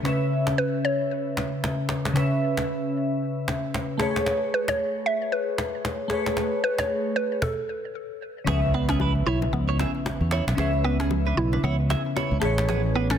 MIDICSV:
0, 0, Header, 1, 8, 480
1, 0, Start_track
1, 0, Tempo, 526316
1, 48, Time_signature, 4, 2, 24, 8
1, 12022, End_track
2, 0, Start_track
2, 0, Title_t, "Synth keys"
2, 0, Program_c, 0, 88
2, 0, Control_c, 0, 64, 127
2, 25, Note_on_c, 0, 49, 72
2, 41, Note_on_c, 0, 61, 64
2, 54, Note_on_c, 0, 71, 64
2, 59, Control_c, 0, 64, 0
2, 70, Note_on_c, 0, 76, 83
2, 213, Control_c, 0, 64, 127
2, 1920, Note_off_c, 0, 49, 0
2, 1929, Note_off_c, 0, 61, 0
2, 1935, Note_off_c, 0, 71, 0
2, 1943, Note_off_c, 0, 76, 0
2, 1945, Note_on_c, 0, 49, 75
2, 1959, Note_on_c, 0, 61, 65
2, 1975, Note_on_c, 0, 71, 67
2, 1990, Note_on_c, 0, 76, 82
2, 3603, Note_off_c, 0, 49, 0
2, 3610, Note_off_c, 0, 61, 0
2, 3618, Note_off_c, 0, 71, 0
2, 3625, Note_on_c, 0, 57, 78
2, 3626, Note_off_c, 0, 76, 0
2, 3639, Note_on_c, 0, 68, 71
2, 3655, Note_on_c, 0, 71, 68
2, 3663, Control_c, 0, 64, 0
2, 3670, Note_on_c, 0, 73, 85
2, 3835, Control_c, 0, 64, 127
2, 5520, Note_off_c, 0, 57, 0
2, 5528, Note_off_c, 0, 68, 0
2, 5535, Note_off_c, 0, 71, 0
2, 5543, Note_off_c, 0, 73, 0
2, 5545, Note_on_c, 0, 57, 80
2, 5560, Note_on_c, 0, 68, 68
2, 5576, Note_on_c, 0, 71, 71
2, 5590, Note_on_c, 0, 73, 83
2, 6732, Note_off_c, 0, 57, 0
2, 6740, Note_off_c, 0, 68, 0
2, 6748, Note_off_c, 0, 71, 0
2, 6755, Note_off_c, 0, 73, 0
2, 6780, Control_c, 0, 64, 0
2, 7701, Note_on_c, 0, 49, 73
2, 7717, Note_on_c, 0, 61, 69
2, 7731, Note_on_c, 0, 71, 73
2, 7748, Note_on_c, 0, 76, 81
2, 7921, Control_c, 0, 64, 127
2, 9598, Note_off_c, 0, 49, 0
2, 9606, Note_off_c, 0, 61, 0
2, 9614, Note_off_c, 0, 71, 0
2, 9622, Note_off_c, 0, 76, 0
2, 9624, Note_on_c, 0, 49, 73
2, 9640, Note_on_c, 0, 61, 73
2, 9654, Note_on_c, 0, 71, 70
2, 9670, Note_on_c, 0, 76, 86
2, 11282, Note_off_c, 0, 49, 0
2, 11290, Note_off_c, 0, 61, 0
2, 11298, Note_off_c, 0, 71, 0
2, 11306, Note_off_c, 0, 76, 0
2, 11308, Note_on_c, 0, 57, 79
2, 11322, Note_on_c, 0, 68, 72
2, 11336, Note_on_c, 0, 71, 73
2, 11339, Control_c, 0, 64, 0
2, 11353, Note_on_c, 0, 73, 86
2, 11525, Control_c, 0, 64, 127
2, 12022, Note_off_c, 0, 57, 0
2, 12022, Note_off_c, 0, 68, 0
2, 12022, Note_off_c, 0, 71, 0
2, 12022, Note_off_c, 0, 73, 0
2, 12022, End_track
3, 0, Start_track
3, 0, Title_t, "Clean electric guitar"
3, 0, Program_c, 1, 27
3, 7736, Note_on_c, 1, 68, 89
3, 7742, Note_on_c, 1, 59, 70
3, 7839, Note_off_c, 1, 68, 0
3, 7843, Note_off_c, 1, 59, 0
3, 7975, Note_on_c, 1, 71, 73
3, 7982, Note_on_c, 1, 62, 56
3, 8078, Note_off_c, 1, 71, 0
3, 8083, Note_off_c, 1, 62, 0
3, 8117, Note_on_c, 1, 68, 76
3, 8123, Note_on_c, 1, 59, 58
3, 8190, Note_off_c, 1, 68, 0
3, 8194, Note_off_c, 1, 59, 0
3, 8217, Note_on_c, 1, 71, 83
3, 8225, Note_on_c, 1, 64, 64
3, 8319, Note_off_c, 1, 71, 0
3, 8324, Note_off_c, 1, 64, 0
3, 8457, Note_on_c, 1, 73, 73
3, 8463, Note_on_c, 1, 64, 61
3, 8559, Note_off_c, 1, 73, 0
3, 8563, Note_off_c, 1, 64, 0
3, 8835, Note_on_c, 1, 73, 76
3, 8843, Note_on_c, 1, 64, 61
3, 8909, Note_off_c, 1, 73, 0
3, 8914, Note_off_c, 1, 64, 0
3, 8936, Note_on_c, 1, 76, 89
3, 8943, Note_on_c, 1, 68, 68
3, 9039, Note_off_c, 1, 76, 0
3, 9043, Note_off_c, 1, 68, 0
3, 9416, Note_on_c, 1, 73, 75
3, 9424, Note_on_c, 1, 64, 59
3, 9519, Note_off_c, 1, 73, 0
3, 9524, Note_off_c, 1, 64, 0
3, 9657, Note_on_c, 1, 68, 84
3, 9663, Note_on_c, 1, 59, 69
3, 9759, Note_off_c, 1, 68, 0
3, 9763, Note_off_c, 1, 59, 0
3, 9896, Note_on_c, 1, 71, 78
3, 9904, Note_on_c, 1, 62, 59
3, 9999, Note_off_c, 1, 71, 0
3, 10004, Note_off_c, 1, 62, 0
3, 10037, Note_on_c, 1, 68, 73
3, 10044, Note_on_c, 1, 59, 55
3, 10110, Note_off_c, 1, 68, 0
3, 10114, Note_off_c, 1, 59, 0
3, 10275, Note_on_c, 1, 71, 71
3, 10283, Note_on_c, 1, 62, 52
3, 10349, Note_off_c, 1, 71, 0
3, 10354, Note_off_c, 1, 62, 0
3, 10516, Note_on_c, 1, 71, 76
3, 10523, Note_on_c, 1, 62, 56
3, 10589, Note_off_c, 1, 71, 0
3, 10594, Note_off_c, 1, 62, 0
3, 10616, Note_on_c, 1, 73, 89
3, 10622, Note_on_c, 1, 64, 71
3, 10719, Note_off_c, 1, 73, 0
3, 10723, Note_off_c, 1, 64, 0
3, 10856, Note_on_c, 1, 76, 76
3, 10865, Note_on_c, 1, 68, 60
3, 10959, Note_off_c, 1, 76, 0
3, 10964, Note_off_c, 1, 68, 0
3, 11097, Note_on_c, 1, 73, 81
3, 11104, Note_on_c, 1, 64, 59
3, 11276, Note_off_c, 1, 73, 0
3, 11280, Note_off_c, 1, 64, 0
3, 11577, Note_on_c, 1, 68, 88
3, 11585, Note_on_c, 1, 59, 72
3, 11679, Note_off_c, 1, 68, 0
3, 11684, Note_off_c, 1, 59, 0
3, 11817, Note_on_c, 1, 71, 72
3, 11824, Note_on_c, 1, 62, 54
3, 11919, Note_off_c, 1, 71, 0
3, 11923, Note_off_c, 1, 62, 0
3, 11954, Note_on_c, 1, 69, 76
3, 11961, Note_on_c, 1, 61, 59
3, 12022, Note_off_c, 1, 61, 0
3, 12022, Note_off_c, 1, 69, 0
3, 12022, End_track
4, 0, Start_track
4, 0, Title_t, "Synth pluck"
4, 0, Program_c, 2, 84
4, 531, Note_on_c, 2, 71, 97
4, 772, Note_on_c, 2, 73, 109
4, 777, Note_off_c, 2, 71, 0
4, 1694, Note_off_c, 2, 73, 0
4, 4140, Note_on_c, 2, 71, 89
4, 4200, Note_off_c, 2, 71, 0
4, 4274, Note_on_c, 2, 73, 98
4, 4615, Note_on_c, 2, 76, 104
4, 4622, Note_off_c, 2, 73, 0
4, 4854, Note_on_c, 2, 71, 85
4, 4859, Note_off_c, 2, 76, 0
4, 5535, Note_off_c, 2, 71, 0
4, 6053, Note_on_c, 2, 71, 100
4, 6191, Note_on_c, 2, 73, 102
4, 6194, Note_off_c, 2, 71, 0
4, 6530, Note_on_c, 2, 71, 92
4, 6540, Note_off_c, 2, 73, 0
4, 6768, Note_on_c, 2, 69, 85
4, 6776, Note_off_c, 2, 71, 0
4, 7452, Note_off_c, 2, 69, 0
4, 7972, Note_on_c, 2, 59, 84
4, 8108, Note_on_c, 2, 61, 96
4, 8114, Note_off_c, 2, 59, 0
4, 8449, Note_on_c, 2, 64, 104
4, 8459, Note_off_c, 2, 61, 0
4, 8557, Note_off_c, 2, 64, 0
4, 8691, Note_on_c, 2, 59, 89
4, 9373, Note_off_c, 2, 59, 0
4, 9890, Note_on_c, 2, 59, 90
4, 10019, Note_off_c, 2, 59, 0
4, 10030, Note_on_c, 2, 61, 96
4, 10372, Note_on_c, 2, 64, 105
4, 10380, Note_off_c, 2, 61, 0
4, 10613, Note_on_c, 2, 59, 88
4, 10618, Note_off_c, 2, 64, 0
4, 11294, Note_off_c, 2, 59, 0
4, 11814, Note_on_c, 2, 59, 91
4, 11953, Note_on_c, 2, 61, 94
4, 11955, Note_off_c, 2, 59, 0
4, 12022, Note_off_c, 2, 61, 0
4, 12022, End_track
5, 0, Start_track
5, 0, Title_t, "Fingered electric bass"
5, 0, Program_c, 3, 33
5, 7729, Note_on_c, 3, 37, 103
5, 8413, Note_off_c, 3, 37, 0
5, 8450, Note_on_c, 3, 35, 99
5, 8623, Note_off_c, 3, 35, 0
5, 8688, Note_on_c, 3, 37, 98
5, 8963, Note_off_c, 3, 37, 0
5, 9307, Note_on_c, 3, 40, 92
5, 9481, Note_off_c, 3, 40, 0
5, 9548, Note_on_c, 3, 35, 83
5, 9621, Note_off_c, 3, 35, 0
5, 9647, Note_on_c, 3, 37, 106
5, 10332, Note_off_c, 3, 37, 0
5, 10370, Note_on_c, 3, 35, 93
5, 10543, Note_off_c, 3, 35, 0
5, 10609, Note_on_c, 3, 37, 98
5, 10883, Note_off_c, 3, 37, 0
5, 11229, Note_on_c, 3, 37, 91
5, 11302, Note_off_c, 3, 37, 0
5, 11331, Note_on_c, 3, 33, 99
5, 12022, Note_off_c, 3, 33, 0
5, 12022, End_track
6, 0, Start_track
6, 0, Title_t, "Impact"
6, 0, Program_c, 4, 103
6, 7727, Note_on_c, 4, 60, 83
6, 9648, Note_off_c, 4, 60, 0
6, 12022, End_track
7, 0, Start_track
7, 0, Title_t, "Cajon"
7, 46, Note_on_c, 9, 38, 96
7, 56, Note_off_c, 9, 38, 0
7, 56, Note_on_c, 9, 38, 76
7, 147, Note_off_c, 9, 38, 0
7, 427, Note_on_c, 9, 38, 88
7, 436, Note_off_c, 9, 38, 0
7, 436, Note_on_c, 9, 38, 73
7, 527, Note_off_c, 9, 38, 0
7, 1251, Note_on_c, 9, 38, 93
7, 1260, Note_off_c, 9, 38, 0
7, 1260, Note_on_c, 9, 38, 76
7, 1351, Note_off_c, 9, 38, 0
7, 1494, Note_on_c, 9, 38, 92
7, 1503, Note_off_c, 9, 38, 0
7, 1503, Note_on_c, 9, 38, 73
7, 1594, Note_off_c, 9, 38, 0
7, 1722, Note_on_c, 9, 38, 96
7, 1731, Note_off_c, 9, 38, 0
7, 1731, Note_on_c, 9, 38, 74
7, 1822, Note_off_c, 9, 38, 0
7, 1873, Note_on_c, 9, 38, 91
7, 1882, Note_off_c, 9, 38, 0
7, 1882, Note_on_c, 9, 38, 77
7, 1968, Note_off_c, 9, 38, 0
7, 1968, Note_on_c, 9, 38, 96
7, 1977, Note_off_c, 9, 38, 0
7, 1977, Note_on_c, 9, 38, 77
7, 2068, Note_off_c, 9, 38, 0
7, 2348, Note_on_c, 9, 38, 89
7, 2357, Note_off_c, 9, 38, 0
7, 2357, Note_on_c, 9, 38, 74
7, 2449, Note_off_c, 9, 38, 0
7, 3173, Note_on_c, 9, 38, 92
7, 3183, Note_off_c, 9, 38, 0
7, 3183, Note_on_c, 9, 38, 76
7, 3274, Note_off_c, 9, 38, 0
7, 3415, Note_on_c, 9, 38, 89
7, 3424, Note_off_c, 9, 38, 0
7, 3424, Note_on_c, 9, 38, 72
7, 3515, Note_off_c, 9, 38, 0
7, 3644, Note_on_c, 9, 38, 94
7, 3653, Note_off_c, 9, 38, 0
7, 3653, Note_on_c, 9, 38, 77
7, 3744, Note_off_c, 9, 38, 0
7, 3796, Note_on_c, 9, 38, 93
7, 3805, Note_off_c, 9, 38, 0
7, 3805, Note_on_c, 9, 38, 76
7, 3889, Note_off_c, 9, 38, 0
7, 3889, Note_on_c, 9, 38, 97
7, 3898, Note_off_c, 9, 38, 0
7, 3898, Note_on_c, 9, 38, 76
7, 3990, Note_off_c, 9, 38, 0
7, 4269, Note_on_c, 9, 38, 92
7, 4279, Note_off_c, 9, 38, 0
7, 4279, Note_on_c, 9, 38, 72
7, 4370, Note_off_c, 9, 38, 0
7, 5092, Note_on_c, 9, 38, 94
7, 5101, Note_off_c, 9, 38, 0
7, 5101, Note_on_c, 9, 38, 72
7, 5193, Note_off_c, 9, 38, 0
7, 5333, Note_on_c, 9, 38, 90
7, 5343, Note_off_c, 9, 38, 0
7, 5343, Note_on_c, 9, 38, 71
7, 5434, Note_off_c, 9, 38, 0
7, 5562, Note_on_c, 9, 38, 98
7, 5571, Note_off_c, 9, 38, 0
7, 5571, Note_on_c, 9, 38, 78
7, 5662, Note_off_c, 9, 38, 0
7, 5712, Note_on_c, 9, 38, 95
7, 5722, Note_off_c, 9, 38, 0
7, 5722, Note_on_c, 9, 38, 76
7, 5807, Note_off_c, 9, 38, 0
7, 5807, Note_on_c, 9, 38, 96
7, 5817, Note_off_c, 9, 38, 0
7, 5817, Note_on_c, 9, 38, 77
7, 5908, Note_off_c, 9, 38, 0
7, 6188, Note_on_c, 9, 38, 89
7, 6197, Note_off_c, 9, 38, 0
7, 6197, Note_on_c, 9, 38, 73
7, 6288, Note_off_c, 9, 38, 0
7, 6767, Note_on_c, 9, 36, 99
7, 6767, Note_on_c, 9, 38, 89
7, 6858, Note_off_c, 9, 38, 0
7, 6859, Note_off_c, 9, 36, 0
7, 7727, Note_on_c, 9, 38, 100
7, 7737, Note_off_c, 9, 38, 0
7, 7737, Note_on_c, 9, 38, 75
7, 7828, Note_off_c, 9, 38, 0
7, 7865, Note_on_c, 9, 38, 33
7, 7956, Note_off_c, 9, 38, 0
7, 7967, Note_on_c, 9, 38, 29
7, 8058, Note_off_c, 9, 38, 0
7, 8105, Note_on_c, 9, 38, 96
7, 8114, Note_off_c, 9, 38, 0
7, 8114, Note_on_c, 9, 38, 75
7, 8205, Note_off_c, 9, 38, 0
7, 8207, Note_on_c, 9, 38, 38
7, 8298, Note_off_c, 9, 38, 0
7, 8347, Note_on_c, 9, 38, 25
7, 8438, Note_off_c, 9, 38, 0
7, 8587, Note_on_c, 9, 38, 27
7, 8678, Note_off_c, 9, 38, 0
7, 8689, Note_on_c, 9, 38, 43
7, 8780, Note_off_c, 9, 38, 0
7, 8825, Note_on_c, 9, 38, 23
7, 8916, Note_off_c, 9, 38, 0
7, 8933, Note_on_c, 9, 38, 96
7, 8942, Note_off_c, 9, 38, 0
7, 8942, Note_on_c, 9, 38, 79
7, 9033, Note_off_c, 9, 38, 0
7, 9071, Note_on_c, 9, 38, 23
7, 9162, Note_off_c, 9, 38, 0
7, 9175, Note_on_c, 9, 38, 93
7, 9184, Note_off_c, 9, 38, 0
7, 9184, Note_on_c, 9, 38, 75
7, 9275, Note_off_c, 9, 38, 0
7, 9311, Note_on_c, 9, 38, 31
7, 9402, Note_off_c, 9, 38, 0
7, 9404, Note_on_c, 9, 38, 101
7, 9414, Note_off_c, 9, 38, 0
7, 9414, Note_on_c, 9, 38, 81
7, 9505, Note_off_c, 9, 38, 0
7, 9557, Note_on_c, 9, 38, 95
7, 9566, Note_off_c, 9, 38, 0
7, 9566, Note_on_c, 9, 38, 79
7, 9650, Note_off_c, 9, 38, 0
7, 9650, Note_on_c, 9, 38, 101
7, 9660, Note_off_c, 9, 38, 0
7, 9660, Note_on_c, 9, 38, 80
7, 9751, Note_off_c, 9, 38, 0
7, 9789, Note_on_c, 9, 38, 33
7, 9881, Note_off_c, 9, 38, 0
7, 9891, Note_on_c, 9, 38, 30
7, 9982, Note_off_c, 9, 38, 0
7, 10031, Note_on_c, 9, 38, 95
7, 10041, Note_off_c, 9, 38, 0
7, 10041, Note_on_c, 9, 38, 76
7, 10132, Note_off_c, 9, 38, 0
7, 10132, Note_on_c, 9, 38, 36
7, 10223, Note_off_c, 9, 38, 0
7, 10272, Note_on_c, 9, 38, 26
7, 10363, Note_off_c, 9, 38, 0
7, 10512, Note_on_c, 9, 38, 26
7, 10603, Note_off_c, 9, 38, 0
7, 10612, Note_on_c, 9, 38, 46
7, 10703, Note_off_c, 9, 38, 0
7, 10749, Note_on_c, 9, 38, 22
7, 10840, Note_off_c, 9, 38, 0
7, 10854, Note_on_c, 9, 38, 95
7, 10864, Note_off_c, 9, 38, 0
7, 10864, Note_on_c, 9, 38, 82
7, 10955, Note_off_c, 9, 38, 0
7, 10991, Note_on_c, 9, 38, 23
7, 11082, Note_off_c, 9, 38, 0
7, 11095, Note_on_c, 9, 38, 94
7, 11104, Note_off_c, 9, 38, 0
7, 11104, Note_on_c, 9, 38, 74
7, 11196, Note_off_c, 9, 38, 0
7, 11230, Note_on_c, 9, 38, 29
7, 11321, Note_off_c, 9, 38, 0
7, 11323, Note_on_c, 9, 38, 98
7, 11332, Note_off_c, 9, 38, 0
7, 11332, Note_on_c, 9, 38, 78
7, 11424, Note_off_c, 9, 38, 0
7, 11474, Note_on_c, 9, 38, 104
7, 11483, Note_off_c, 9, 38, 0
7, 11483, Note_on_c, 9, 38, 84
7, 11570, Note_off_c, 9, 38, 0
7, 11570, Note_on_c, 9, 38, 100
7, 11579, Note_off_c, 9, 38, 0
7, 11579, Note_on_c, 9, 38, 83
7, 11670, Note_off_c, 9, 38, 0
7, 11706, Note_on_c, 9, 38, 33
7, 11797, Note_off_c, 9, 38, 0
7, 11808, Note_on_c, 9, 38, 28
7, 11900, Note_off_c, 9, 38, 0
7, 11948, Note_on_c, 9, 38, 93
7, 11958, Note_off_c, 9, 38, 0
7, 11958, Note_on_c, 9, 38, 75
7, 12022, Note_off_c, 9, 38, 0
7, 12022, End_track
8, 0, Start_track
8, 0, Title_t, "Drums"
8, 7730, Note_on_c, 9, 64, 78
8, 7821, Note_off_c, 9, 64, 0
8, 8205, Note_on_c, 9, 60, 87
8, 8205, Note_on_c, 9, 64, 84
8, 8296, Note_off_c, 9, 60, 0
8, 8296, Note_off_c, 9, 64, 0
8, 8592, Note_on_c, 9, 61, 77
8, 8683, Note_off_c, 9, 61, 0
8, 8697, Note_on_c, 9, 64, 92
8, 8788, Note_off_c, 9, 64, 0
8, 8935, Note_on_c, 9, 60, 55
8, 8935, Note_on_c, 9, 61, 76
8, 9026, Note_off_c, 9, 60, 0
8, 9026, Note_off_c, 9, 61, 0
8, 9173, Note_on_c, 9, 60, 81
8, 9264, Note_off_c, 9, 60, 0
8, 9653, Note_on_c, 9, 64, 77
8, 9744, Note_off_c, 9, 64, 0
8, 10129, Note_on_c, 9, 60, 89
8, 10129, Note_on_c, 9, 64, 86
8, 10220, Note_off_c, 9, 60, 0
8, 10220, Note_off_c, 9, 64, 0
8, 10515, Note_on_c, 9, 61, 76
8, 10607, Note_off_c, 9, 61, 0
8, 10619, Note_on_c, 9, 64, 92
8, 10711, Note_off_c, 9, 64, 0
8, 10856, Note_on_c, 9, 60, 55
8, 10856, Note_on_c, 9, 61, 75
8, 10947, Note_off_c, 9, 60, 0
8, 10947, Note_off_c, 9, 61, 0
8, 11093, Note_on_c, 9, 60, 76
8, 11184, Note_off_c, 9, 60, 0
8, 11572, Note_on_c, 9, 64, 76
8, 11663, Note_off_c, 9, 64, 0
8, 12022, End_track
0, 0, End_of_file